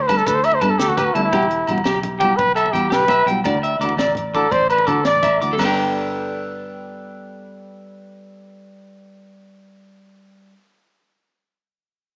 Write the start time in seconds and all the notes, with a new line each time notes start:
Already playing: D2
0.02 C5
0.07 G3 B3 B4 A5, kick, snare, closed hi-hat, muted conga, low agogo
0.11 D4 A4
0.17 A4, maracas
0.26 D2 A4 B4, kick, closed hi-hat, low conga, maracas
0.34 C5, high conga
0.44 E5, closed hi-hat, low agogo
0.51 C5, muted conga
0.61 G2 G3 B3 D4 A4 B4 A5, kick, closed hi-hat, low conga, low agogo, maracas
0.70 A4
0.78 D2 G4 A4, snare, closed hi-hat, maracas
0.89 F#4, high conga
0.97 G4 B4, closed hi-hat, muted conga, low conga, low agogo, maracas
1.06 F#4
1.14 D2 G3 B3 D4 E4 A4 A5, closed hi-hat
1.24 E4
1.33 E1 G3 B3 E4 F#4 G4, kick, closed hi-hat, muted conga, low conga, low agogo
1.43 high conga
1.51 closed hi-hat
1.67 E1 G3 B3 E4 F#4, closed hi-hat, low conga, low agogo
1.78 muted conga
1.84 B1 G4, snare, closed hi-hat, low conga, low agogo
1.94 high conga
2.03 closed hi-hat, low conga
2.19 G3 G4 G5, kick, closed hi-hat, muted conga, low agogo
2.23 B3 E4 F#4
2.37 B1 B4, kick, closed hi-hat, low conga
2.48 high conga
2.55 A4 E5, closed hi-hat, low agogo
2.66 muted conga
2.72 E2 G3 B3 E4 G4 G5, closed hi-hat, low conga, low agogo
2.77 F#4
2.90 B1 G4 B4, snare, closed hi-hat
3.00 high conga
3.08 E5, closed hi-hat, muted conga, low conga, low agogo
3.26 B1 G3 B3 E4 G5, closed hi-hat
3.31 F#4
3.44 D2 E3 A3 D4 F#4 D5, kick, closed hi-hat, muted conga, low conga, low agogo
3.54 high conga
3.63 E5, closed hi-hat
3.79 D2 E3 A3 D4 D6, closed hi-hat, low agogo
3.84 F#4
3.89 muted conga, low conga
3.97 A1 D5, snare, closed hi-hat, low agogo
4.07 high conga, low conga
4.15 closed hi-hat, low conga
4.34 E3 A3 D4 F#4 A4 D6, kick, closed hi-hat, low agogo
4.51 A1 C5 D5, kick, closed hi-hat, low conga
4.61 high conga
4.70 B4, closed hi-hat, low agogo
4.78 muted conga
4.87 D3 E3 A3 D4 F#4 A4 D6, kick, closed hi-hat, low conga, low agogo
5.05 A1 D5, snare, closed hi-hat
5.15 high conga, low conga
5.23 E5, closed hi-hat, muted conga, low conga, low agogo
5.32 low conga
5.41 D2 E3 A3 D4 F#4 D6, closed hi-hat
5.53 G3 A4
5.59 G1 B3 B4, snare, open hi-hat, muted conga, low agogo
5.64 D4 A4 G5